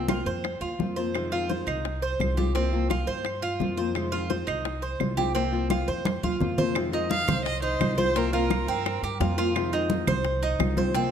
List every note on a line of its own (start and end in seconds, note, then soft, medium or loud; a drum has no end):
0.00 0.21 C2 medium
0.08 0.43 F3 soft
0.08 0.43 A#3 soft
0.08 0.44 C4 medium
0.08 0.26 F4 medium
0.08 0.44 F4 medium
0.08 high bongo medium
0.08 high conga medium
0.08 claves medium
0.26 0.59 F2 medium
0.26 0.61 C5 medium
0.26 high bongo soft
0.26 high conga soft
0.44 muted nylon-string guitar stroke medium
0.44 high bongo medium
0.44 high conga soft
0.44 claves medium
0.61 0.78 D#2 medium
0.61 0.96 F4 medium
0.61 high bongo soft
0.61 high conga soft
0.79 1.61 F2 medium
0.79 0.96 F3 soft
0.79 0.97 A#3 medium
0.79 0.97 C4 soft
0.79 0.96 F4 soft
0.79 high bongo soft
0.79 low bongo medium
0.79 high conga medium
0.96 1.15 F3 medium
0.96 1.15 A#3 soft
0.96 1.14 C4 medium
0.96 1.14 F4 medium
0.96 1.31 C5 medium
0.96 high bongo soft
0.96 high conga soft
1.14 1.31 C3 medium
1.14 1.32 D#3 medium
1.14 1.32 G#3 medium
1.14 1.32 C4 medium
1.14 1.31 F4 medium
1.14 high bongo medium
1.14 high conga soft
1.14 claves medium
1.32 1.49 D#3 medium
1.32 1.50 G#3 medium
1.32 1.49 C4 medium
1.32 1.49 F4 medium
1.32 high conga soft
1.49 1.84 D#3 soft
1.49 1.84 G#3 medium
1.49 1.85 C4 medium
1.49 1.85 F4 medium
1.49 1.67 C5 medium
1.49 high bongo medium
1.49 high conga medium
1.67 2.16 C2 medium
1.67 2.01 D#4 medium
1.67 high bongo soft
1.67 high conga soft
1.67 claves medium
1.85 muted nylon-string guitar stroke medium
1.85 high bongo medium
1.85 high conga soft
2.02 2.36 C5 medium
2.02 high bongo soft
2.02 high conga soft
2.20 3.02 C2 medium
2.20 2.37 D#3 soft
2.20 2.37 G#3 soft
2.20 2.37 C4 soft
2.20 2.36 F4 medium
2.20 high bongo soft
2.20 low bongo medium
2.20 high conga medium
2.20 claves medium
2.37 2.55 D#3 medium
2.37 2.55 G#3 medium
2.37 2.55 C4 medium
2.37 2.54 F4 medium
2.37 2.54 G4 medium
2.37 high bongo soft
2.37 high conga medium
2.55 2.72 C3 medium
2.55 2.72 F3 medium
2.55 2.73 A#3 medium
2.55 2.89 C4 medium
2.55 2.72 C4 medium
2.55 2.72 F4 medium
2.55 high bongo medium
2.55 high conga soft
2.73 2.88 F3 medium
2.73 2.89 A#3 medium
2.73 2.89 C4 medium
2.73 2.90 F4 medium
2.73 high conga soft
2.89 3.24 F3 medium
2.89 3.24 A#3 soft
2.89 3.24 C4 soft
2.89 3.07 F4 medium
2.89 3.24 F4 medium
2.89 high bongo medium
2.89 high conga medium
2.89 claves medium
3.07 3.56 G2 medium
3.07 3.42 C5 medium
3.07 high bongo soft
3.07 high conga soft
3.25 muted nylon-string guitar stroke medium
3.25 high bongo medium
3.25 high conga soft
3.25 claves medium
3.42 3.77 F4 medium
3.42 high bongo soft
3.42 high conga soft
3.60 4.42 F2 loud
3.60 3.77 F3 soft
3.60 3.77 A#3 medium
3.60 3.77 C4 medium
3.60 3.76 F4 medium
3.60 high bongo soft
3.60 low bongo medium
3.60 high conga medium
3.77 3.95 F3 soft
3.77 3.95 A#3 medium
3.77 3.95 C4 medium
3.77 3.95 F4 medium
3.77 4.12 C5 medium
3.77 high bongo soft
3.77 high conga soft
3.95 4.12 C3 medium
3.95 4.12 D#3 medium
3.95 4.13 G#3 medium
3.95 4.12 C4 medium
3.95 4.11 F4 medium
3.95 high bongo medium
3.95 high conga soft
3.95 claves medium
4.12 4.29 D#3 medium
4.12 4.30 G#3 medium
4.12 4.30 C4 medium
4.12 4.29 F4 medium
4.12 4.30 F4 medium
4.12 high conga soft
4.30 4.64 D#3 soft
4.30 4.65 G#3 medium
4.30 4.65 C4 medium
4.30 4.65 F4 medium
4.30 4.47 C5 medium
4.30 high bongo medium
4.30 high conga medium
4.47 4.97 C2 medium
4.47 4.82 D#4 medium
4.47 high bongo soft
4.47 high conga soft
4.47 claves medium
4.65 muted nylon-string guitar stroke medium
4.65 high bongo medium
4.65 high conga soft
4.82 5.17 C5 medium
4.82 high bongo soft
4.82 high conga soft
5.00 5.82 C2 medium
5.00 5.17 D#3 soft
5.00 5.17 G#3 medium
5.00 5.17 C4 soft
5.00 5.16 F4 medium
5.00 high bongo soft
5.00 low bongo medium
5.00 high conga medium
5.00 claves medium
5.17 5.35 D#3 medium
5.17 5.35 G#3 medium
5.17 5.35 C4 medium
5.17 5.34 F4 medium
5.17 5.34 G4 medium
5.17 high bongo soft
5.17 high conga medium
5.35 5.52 C3 medium
5.35 5.52 F3 medium
5.35 5.53 A#3 medium
5.35 5.69 C4 medium
5.35 5.52 C4 medium
5.35 5.51 F4 medium
5.35 high bongo medium
5.35 high conga soft
5.52 5.69 F3 medium
5.52 5.69 A#3 medium
5.52 5.70 C4 medium
5.52 5.70 F4 medium
5.52 high conga soft
5.70 6.03 F3 soft
5.70 6.04 A#3 medium
5.70 6.04 C4 medium
5.70 5.88 F4 medium
5.70 6.04 F4 medium
5.70 high bongo medium
5.70 high conga medium
5.70 claves medium
5.88 6.21 F2 medium
5.88 6.22 C5 medium
5.88 high bongo soft
5.88 high conga soft
6.04 muted nylon-string guitar stroke medium
6.04 high bongo medium
6.04 high conga loud
6.04 claves medium
6.23 6.40 D#2 medium
6.23 6.57 F4 medium
6.23 high bongo soft
6.23 high conga medium
6.40 7.22 F2 medium
6.40 6.57 F3 medium
6.40 6.57 A#3 medium
6.40 6.57 C4 soft
6.40 6.56 F4 medium
6.40 high bongo soft
6.40 low bongo medium
6.40 low conga medium
6.58 6.75 F3 medium
6.58 6.75 A#3 medium
6.58 6.75 C4 medium
6.58 6.75 F4 medium
6.58 6.75 C5 medium
6.58 high bongo soft
6.58 low conga medium
6.74 6.92 C3 medium
6.74 6.92 D#3 medium
6.74 6.92 G#3 medium
6.74 6.92 C4 medium
6.74 6.91 F4 medium
6.74 high bongo medium
6.74 high conga soft
6.74 claves medium
6.92 7.09 D#3 medium
6.92 7.09 G#3 medium
6.92 7.10 C4 medium
6.92 7.27 D#4 medium
6.92 7.09 F4 medium
6.92 high conga soft
7.10 7.44 D#3 soft
7.10 7.44 G#3 medium
7.10 7.45 C4 medium
7.10 7.45 F4 medium
7.10 7.43 F5 loud
7.10 high bongo medium
7.10 high conga medium
7.28 7.77 C2 medium
7.28 7.62 C5 medium
7.28 high bongo soft
7.28 high conga loud
7.28 low conga medium
7.28 claves medium
7.45 7.62 D#5 loud
7.45 muted nylon-string guitar stroke medium
7.45 high bongo medium
7.45 high conga soft
7.62 7.97 D#4 medium
7.62 7.96 C5 medium
7.62 high bongo soft
7.62 high conga soft
7.80 8.62 C2 medium
7.80 7.97 D#3 soft
7.80 7.97 G#3 medium
7.80 7.97 C4 soft
7.80 7.96 F4 medium
7.80 high bongo medium
7.80 low bongo medium
7.80 high conga medium
7.80 claves medium
7.97 8.15 D#3 soft
7.97 8.15 G#3 medium
7.97 8.15 C4 medium
7.97 8.14 F4 medium
7.97 8.15 C5 medium
7.97 8.18 C5 medium
7.97 high bongo soft
7.97 high conga medium
8.15 8.32 C3 medium
8.15 8.32 F3 medium
8.15 8.33 A#3 medium
8.15 8.33 C4 medium
8.15 8.32 C4 medium
8.15 8.31 F4 medium
8.15 8.33 A#4 medium
8.15 high bongo medium
8.15 high conga soft
8.32 8.49 F3 medium
8.32 8.49 A#3 medium
8.32 8.50 C4 medium
8.32 8.49 F4 medium
8.32 8.67 F4 medium
8.32 9.34 A#4 medium
8.32 high bongo soft
8.32 high conga soft
8.50 8.85 F3 soft
8.50 8.85 A#3 medium
8.50 8.85 C4 medium
8.50 8.85 F4 medium
8.50 high bongo medium
8.50 high conga medium
8.50 claves medium
8.67 9.00 G2 medium
8.67 9.02 C4 medium
8.67 high conga soft
8.85 muted nylon-string guitar stroke medium
8.85 high bongo medium
8.85 high conga soft
8.85 claves medium
9.03 9.19 G2 medium
9.03 9.20 G4 medium
9.03 high bongo soft
9.03 high conga soft
9.20 10.02 F2 loud
9.20 9.37 F3 soft
9.20 9.37 A#3 medium
9.20 9.37 C4 medium
9.20 9.37 F4 medium
9.20 9.36 F4 medium
9.20 high bongo medium
9.20 low bongo medium
9.20 high conga medium
9.38 9.55 F3 medium
9.38 9.55 A#3 medium
9.38 9.55 C4 medium
9.38 9.54 F4 medium
9.38 9.72 F4 medium
9.38 high bongo soft
9.55 9.72 C3 medium
9.55 9.72 D#3 medium
9.55 9.72 G#3 medium
9.55 9.72 C4 medium
9.55 9.71 F4 medium
9.55 high bongo medium
9.55 high conga soft
9.55 claves medium
9.72 9.88 D#3 medium
9.72 9.89 G#3 medium
9.72 9.90 C4 medium
9.72 10.07 D#4 medium
9.72 9.89 F4 medium
9.72 high conga soft
9.90 10.24 D#3 medium
9.90 10.24 G#3 medium
9.90 10.24 C4 medium
9.90 10.24 F4 medium
9.90 high bongo medium
9.90 high conga medium
10.07 10.56 C2 medium
10.07 10.42 C5 medium
10.07 high bongo soft
10.07 high conga medium
10.07 low conga medium
10.07 claves medium
10.25 muted nylon-string guitar stroke medium
10.25 high bongo medium
10.25 high conga soft
10.42 10.77 D#4 medium
10.42 high bongo soft
10.42 high conga soft
10.59 11.11 C2 medium
10.59 10.77 D#3 medium
10.59 10.77 G#3 soft
10.59 10.76 C4 medium
10.59 10.75 F4 medium
10.59 high bongo medium
10.59 low bongo medium
10.59 high conga medium
10.59 claves medium
10.77 10.94 D#3 medium
10.77 10.95 G#3 medium
10.77 10.94 C4 medium
10.77 10.94 F4 medium
10.77 10.95 C5 medium
10.77 high bongo soft
10.77 high conga medium
10.94 11.11 C3 medium
10.94 11.11 F3 medium
10.94 11.11 A#3 medium
10.94 11.11 C4 medium
10.94 11.11 F4 medium
10.94 high bongo medium
10.94 high conga soft